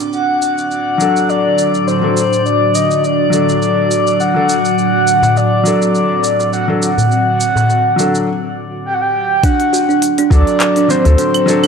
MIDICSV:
0, 0, Header, 1, 9, 480
1, 0, Start_track
1, 0, Key_signature, 2, "major"
1, 0, Tempo, 582524
1, 96, Time_signature, 4, 2, 24, 8
1, 9617, End_track
2, 0, Start_track
2, 0, Title_t, "Synth texture"
2, 0, Program_c, 0, 99
2, 0, Note_on_c, 0, 86, 78
2, 101, Note_on_c, 0, 74, 78
2, 106, Note_off_c, 0, 86, 0
2, 6819, Note_off_c, 0, 74, 0
2, 9617, End_track
3, 0, Start_track
3, 0, Title_t, "Soft synth lead"
3, 0, Program_c, 1, 80
3, 105, Note_on_c, 1, 78, 106
3, 548, Note_off_c, 1, 78, 0
3, 583, Note_on_c, 1, 78, 100
3, 1065, Note_on_c, 1, 74, 96
3, 1077, Note_off_c, 1, 78, 0
3, 1541, Note_off_c, 1, 74, 0
3, 1544, Note_on_c, 1, 72, 95
3, 1987, Note_off_c, 1, 72, 0
3, 2025, Note_on_c, 1, 74, 93
3, 2264, Note_on_c, 1, 75, 87
3, 2276, Note_off_c, 1, 74, 0
3, 2504, Note_on_c, 1, 74, 96
3, 2517, Note_off_c, 1, 75, 0
3, 3460, Note_off_c, 1, 74, 0
3, 3464, Note_on_c, 1, 78, 107
3, 3907, Note_off_c, 1, 78, 0
3, 3946, Note_on_c, 1, 78, 106
3, 4425, Note_on_c, 1, 74, 91
3, 4437, Note_off_c, 1, 78, 0
3, 4898, Note_off_c, 1, 74, 0
3, 4903, Note_on_c, 1, 74, 90
3, 5347, Note_off_c, 1, 74, 0
3, 5382, Note_on_c, 1, 78, 92
3, 5489, Note_off_c, 1, 78, 0
3, 5619, Note_on_c, 1, 78, 104
3, 7025, Note_off_c, 1, 78, 0
3, 7296, Note_on_c, 1, 79, 102
3, 7364, Note_on_c, 1, 78, 85
3, 7377, Note_off_c, 1, 79, 0
3, 7423, Note_on_c, 1, 79, 111
3, 7436, Note_off_c, 1, 78, 0
3, 7780, Note_on_c, 1, 78, 107
3, 7792, Note_off_c, 1, 79, 0
3, 8258, Note_off_c, 1, 78, 0
3, 8502, Note_on_c, 1, 74, 124
3, 8983, Note_on_c, 1, 72, 117
3, 8996, Note_off_c, 1, 74, 0
3, 9617, Note_off_c, 1, 72, 0
3, 9617, End_track
4, 0, Start_track
4, 0, Title_t, "Felt piano"
4, 0, Program_c, 2, 0
4, 807, Note_on_c, 2, 54, 68
4, 824, Note_on_c, 2, 62, 60
4, 839, Note_on_c, 2, 69, 75
4, 1632, Note_off_c, 2, 54, 0
4, 1641, Note_off_c, 2, 62, 0
4, 1648, Note_off_c, 2, 69, 0
4, 1665, Note_on_c, 2, 54, 64
4, 1671, Note_on_c, 2, 62, 58
4, 1680, Note_on_c, 2, 69, 70
4, 1819, Note_off_c, 2, 54, 0
4, 1822, Note_off_c, 2, 62, 0
4, 1826, Note_off_c, 2, 69, 0
4, 2719, Note_on_c, 2, 54, 68
4, 2734, Note_on_c, 2, 62, 60
4, 2751, Note_on_c, 2, 69, 75
4, 3548, Note_off_c, 2, 54, 0
4, 3556, Note_off_c, 2, 62, 0
4, 3564, Note_off_c, 2, 69, 0
4, 3578, Note_on_c, 2, 54, 63
4, 3588, Note_on_c, 2, 62, 60
4, 3596, Note_on_c, 2, 69, 69
4, 3735, Note_off_c, 2, 54, 0
4, 3740, Note_off_c, 2, 62, 0
4, 3744, Note_off_c, 2, 69, 0
4, 4643, Note_on_c, 2, 54, 70
4, 4658, Note_on_c, 2, 62, 63
4, 4675, Note_on_c, 2, 69, 80
4, 5470, Note_off_c, 2, 54, 0
4, 5477, Note_off_c, 2, 62, 0
4, 5486, Note_off_c, 2, 69, 0
4, 5503, Note_on_c, 2, 54, 67
4, 5511, Note_on_c, 2, 62, 59
4, 5518, Note_on_c, 2, 69, 72
4, 5658, Note_off_c, 2, 54, 0
4, 5662, Note_off_c, 2, 62, 0
4, 5665, Note_off_c, 2, 69, 0
4, 6560, Note_on_c, 2, 54, 71
4, 6577, Note_on_c, 2, 62, 65
4, 6594, Note_on_c, 2, 69, 74
4, 6808, Note_off_c, 2, 54, 0
4, 6817, Note_off_c, 2, 62, 0
4, 6825, Note_off_c, 2, 69, 0
4, 8489, Note_on_c, 2, 54, 78
4, 8497, Note_on_c, 2, 62, 72
4, 8505, Note_on_c, 2, 69, 88
4, 8951, Note_off_c, 2, 54, 0
4, 8955, Note_off_c, 2, 62, 0
4, 8959, Note_off_c, 2, 69, 0
4, 8970, Note_on_c, 2, 54, 76
4, 8978, Note_on_c, 2, 62, 72
4, 8987, Note_on_c, 2, 72, 90
4, 9074, Note_off_c, 2, 54, 0
4, 9078, Note_off_c, 2, 62, 0
4, 9082, Note_off_c, 2, 72, 0
4, 9101, Note_on_c, 2, 54, 76
4, 9108, Note_on_c, 2, 62, 71
4, 9117, Note_on_c, 2, 69, 88
4, 9427, Note_off_c, 2, 54, 0
4, 9430, Note_off_c, 2, 62, 0
4, 9435, Note_off_c, 2, 69, 0
4, 9441, Note_on_c, 2, 54, 98
4, 9455, Note_on_c, 2, 62, 91
4, 9474, Note_on_c, 2, 69, 109
4, 9617, Note_off_c, 2, 54, 0
4, 9617, Note_off_c, 2, 62, 0
4, 9617, Note_off_c, 2, 69, 0
4, 9617, End_track
5, 0, Start_track
5, 0, Title_t, "Kalimba"
5, 0, Program_c, 3, 108
5, 0, Note_on_c, 3, 62, 96
5, 98, Note_off_c, 3, 62, 0
5, 7777, Note_on_c, 3, 62, 79
5, 7902, Note_off_c, 3, 62, 0
5, 8017, Note_on_c, 3, 66, 82
5, 8142, Note_off_c, 3, 66, 0
5, 8148, Note_on_c, 3, 62, 77
5, 8375, Note_off_c, 3, 62, 0
5, 8391, Note_on_c, 3, 62, 98
5, 8857, Note_off_c, 3, 62, 0
5, 8873, Note_on_c, 3, 62, 69
5, 8932, Note_off_c, 3, 62, 0
5, 8974, Note_on_c, 3, 60, 69
5, 9094, Note_off_c, 3, 60, 0
5, 9107, Note_on_c, 3, 66, 67
5, 9210, Note_off_c, 3, 66, 0
5, 9214, Note_on_c, 3, 62, 84
5, 9341, Note_off_c, 3, 62, 0
5, 9452, Note_on_c, 3, 66, 78
5, 9580, Note_off_c, 3, 66, 0
5, 9587, Note_on_c, 3, 62, 74
5, 9617, Note_off_c, 3, 62, 0
5, 9617, End_track
6, 0, Start_track
6, 0, Title_t, "Ambient pad"
6, 0, Program_c, 4, 92
6, 99, Note_on_c, 4, 54, 67
6, 100, Note_on_c, 4, 45, 76
6, 100, Note_on_c, 4, 50, 69
6, 101, Note_on_c, 4, 62, 68
6, 101, Note_on_c, 4, 66, 83
6, 3906, Note_off_c, 4, 62, 0
6, 3929, Note_on_c, 4, 60, 68
6, 6784, Note_off_c, 4, 60, 0
6, 6785, Note_off_c, 4, 50, 0
6, 6785, Note_off_c, 4, 54, 0
6, 6786, Note_off_c, 4, 45, 0
6, 6786, Note_off_c, 4, 66, 0
6, 7769, Note_on_c, 4, 45, 81
6, 7769, Note_on_c, 4, 69, 89
6, 7771, Note_on_c, 4, 62, 75
6, 7772, Note_on_c, 4, 54, 75
6, 7773, Note_on_c, 4, 50, 77
6, 9617, Note_off_c, 4, 45, 0
6, 9617, Note_off_c, 4, 50, 0
6, 9617, Note_off_c, 4, 54, 0
6, 9617, Note_off_c, 4, 62, 0
6, 9617, Note_off_c, 4, 69, 0
6, 9617, End_track
7, 0, Start_track
7, 0, Title_t, "Sub bass"
7, 0, Program_c, 5, 38
7, 8497, Note_on_c, 5, 38, 104
7, 8602, Note_off_c, 5, 38, 0
7, 9111, Note_on_c, 5, 38, 109
7, 9196, Note_off_c, 5, 38, 0
7, 9617, End_track
8, 0, Start_track
8, 0, Title_t, "Darbuka"
8, 4307, Note_on_c, 9, 64, 88
8, 4310, Note_on_c, 9, 63, 73
8, 4389, Note_off_c, 9, 64, 0
8, 4392, Note_off_c, 9, 63, 0
8, 4416, Note_on_c, 9, 62, 50
8, 4498, Note_off_c, 9, 62, 0
8, 5132, Note_on_c, 9, 63, 61
8, 5214, Note_off_c, 9, 63, 0
8, 5271, Note_on_c, 9, 63, 51
8, 5353, Note_off_c, 9, 63, 0
8, 5374, Note_on_c, 9, 62, 30
8, 5456, Note_off_c, 9, 62, 0
8, 5749, Note_on_c, 9, 64, 88
8, 5832, Note_off_c, 9, 64, 0
8, 6227, Note_on_c, 9, 64, 91
8, 6235, Note_on_c, 9, 63, 69
8, 6309, Note_off_c, 9, 64, 0
8, 6318, Note_off_c, 9, 63, 0
8, 6341, Note_on_c, 9, 62, 54
8, 6423, Note_off_c, 9, 62, 0
8, 9617, End_track
9, 0, Start_track
9, 0, Title_t, "Drums"
9, 106, Note_on_c, 9, 82, 29
9, 189, Note_off_c, 9, 82, 0
9, 346, Note_on_c, 9, 82, 72
9, 428, Note_off_c, 9, 82, 0
9, 478, Note_on_c, 9, 82, 35
9, 561, Note_off_c, 9, 82, 0
9, 587, Note_on_c, 9, 82, 28
9, 669, Note_off_c, 9, 82, 0
9, 826, Note_on_c, 9, 82, 64
9, 909, Note_off_c, 9, 82, 0
9, 958, Note_on_c, 9, 82, 37
9, 1040, Note_off_c, 9, 82, 0
9, 1067, Note_on_c, 9, 82, 29
9, 1149, Note_off_c, 9, 82, 0
9, 1304, Note_on_c, 9, 82, 63
9, 1387, Note_off_c, 9, 82, 0
9, 1437, Note_on_c, 9, 82, 35
9, 1519, Note_off_c, 9, 82, 0
9, 1548, Note_on_c, 9, 82, 29
9, 1630, Note_off_c, 9, 82, 0
9, 1786, Note_on_c, 9, 82, 65
9, 1869, Note_off_c, 9, 82, 0
9, 1919, Note_on_c, 9, 82, 39
9, 2001, Note_off_c, 9, 82, 0
9, 2027, Note_on_c, 9, 82, 29
9, 2109, Note_off_c, 9, 82, 0
9, 2264, Note_on_c, 9, 82, 73
9, 2347, Note_off_c, 9, 82, 0
9, 2397, Note_on_c, 9, 82, 38
9, 2479, Note_off_c, 9, 82, 0
9, 2506, Note_on_c, 9, 82, 29
9, 2588, Note_off_c, 9, 82, 0
9, 2742, Note_on_c, 9, 82, 70
9, 2825, Note_off_c, 9, 82, 0
9, 2876, Note_on_c, 9, 82, 39
9, 2958, Note_off_c, 9, 82, 0
9, 2984, Note_on_c, 9, 82, 33
9, 3066, Note_off_c, 9, 82, 0
9, 3222, Note_on_c, 9, 82, 66
9, 3304, Note_off_c, 9, 82, 0
9, 3353, Note_on_c, 9, 82, 37
9, 3436, Note_off_c, 9, 82, 0
9, 3461, Note_on_c, 9, 82, 31
9, 3543, Note_off_c, 9, 82, 0
9, 3700, Note_on_c, 9, 82, 71
9, 3783, Note_off_c, 9, 82, 0
9, 3831, Note_on_c, 9, 82, 42
9, 3914, Note_off_c, 9, 82, 0
9, 3941, Note_on_c, 9, 82, 31
9, 4024, Note_off_c, 9, 82, 0
9, 4180, Note_on_c, 9, 82, 74
9, 4262, Note_off_c, 9, 82, 0
9, 4311, Note_on_c, 9, 82, 37
9, 4393, Note_off_c, 9, 82, 0
9, 4422, Note_on_c, 9, 82, 28
9, 4505, Note_off_c, 9, 82, 0
9, 4661, Note_on_c, 9, 82, 71
9, 4744, Note_off_c, 9, 82, 0
9, 4795, Note_on_c, 9, 82, 42
9, 4878, Note_off_c, 9, 82, 0
9, 4901, Note_on_c, 9, 82, 30
9, 4983, Note_off_c, 9, 82, 0
9, 5141, Note_on_c, 9, 82, 70
9, 5223, Note_off_c, 9, 82, 0
9, 5273, Note_on_c, 9, 82, 40
9, 5356, Note_off_c, 9, 82, 0
9, 5382, Note_on_c, 9, 82, 32
9, 5464, Note_off_c, 9, 82, 0
9, 5622, Note_on_c, 9, 82, 70
9, 5704, Note_off_c, 9, 82, 0
9, 5755, Note_on_c, 9, 82, 44
9, 5838, Note_off_c, 9, 82, 0
9, 5863, Note_on_c, 9, 82, 31
9, 5945, Note_off_c, 9, 82, 0
9, 6101, Note_on_c, 9, 82, 75
9, 6184, Note_off_c, 9, 82, 0
9, 6237, Note_on_c, 9, 82, 39
9, 6319, Note_off_c, 9, 82, 0
9, 6343, Note_on_c, 9, 82, 29
9, 6425, Note_off_c, 9, 82, 0
9, 6583, Note_on_c, 9, 82, 67
9, 6665, Note_off_c, 9, 82, 0
9, 6713, Note_on_c, 9, 82, 39
9, 6796, Note_off_c, 9, 82, 0
9, 7774, Note_on_c, 9, 36, 123
9, 7774, Note_on_c, 9, 46, 72
9, 7783, Note_on_c, 9, 82, 43
9, 7856, Note_off_c, 9, 36, 0
9, 7857, Note_off_c, 9, 46, 0
9, 7865, Note_off_c, 9, 82, 0
9, 7908, Note_on_c, 9, 46, 45
9, 7990, Note_off_c, 9, 46, 0
9, 8023, Note_on_c, 9, 82, 81
9, 8105, Note_off_c, 9, 82, 0
9, 8158, Note_on_c, 9, 82, 30
9, 8240, Note_off_c, 9, 82, 0
9, 8257, Note_on_c, 9, 46, 66
9, 8265, Note_on_c, 9, 82, 44
9, 8340, Note_off_c, 9, 46, 0
9, 8348, Note_off_c, 9, 82, 0
9, 8389, Note_on_c, 9, 46, 49
9, 8472, Note_off_c, 9, 46, 0
9, 8495, Note_on_c, 9, 36, 104
9, 8503, Note_on_c, 9, 82, 80
9, 8577, Note_off_c, 9, 36, 0
9, 8586, Note_off_c, 9, 82, 0
9, 8629, Note_on_c, 9, 46, 29
9, 8637, Note_on_c, 9, 82, 33
9, 8712, Note_off_c, 9, 46, 0
9, 8720, Note_off_c, 9, 82, 0
9, 8735, Note_on_c, 9, 39, 83
9, 8735, Note_on_c, 9, 46, 75
9, 8744, Note_on_c, 9, 82, 44
9, 8818, Note_off_c, 9, 39, 0
9, 8818, Note_off_c, 9, 46, 0
9, 8826, Note_off_c, 9, 82, 0
9, 8867, Note_on_c, 9, 46, 42
9, 8875, Note_on_c, 9, 82, 30
9, 8949, Note_off_c, 9, 46, 0
9, 8957, Note_off_c, 9, 82, 0
9, 8982, Note_on_c, 9, 82, 77
9, 9065, Note_off_c, 9, 82, 0
9, 9108, Note_on_c, 9, 46, 32
9, 9116, Note_on_c, 9, 82, 33
9, 9190, Note_off_c, 9, 46, 0
9, 9198, Note_off_c, 9, 82, 0
9, 9215, Note_on_c, 9, 46, 70
9, 9223, Note_on_c, 9, 82, 44
9, 9297, Note_off_c, 9, 46, 0
9, 9306, Note_off_c, 9, 82, 0
9, 9347, Note_on_c, 9, 46, 46
9, 9347, Note_on_c, 9, 75, 59
9, 9430, Note_off_c, 9, 46, 0
9, 9430, Note_off_c, 9, 75, 0
9, 9462, Note_on_c, 9, 82, 82
9, 9545, Note_off_c, 9, 82, 0
9, 9588, Note_on_c, 9, 46, 35
9, 9588, Note_on_c, 9, 75, 67
9, 9617, Note_off_c, 9, 46, 0
9, 9617, Note_off_c, 9, 75, 0
9, 9617, End_track
0, 0, End_of_file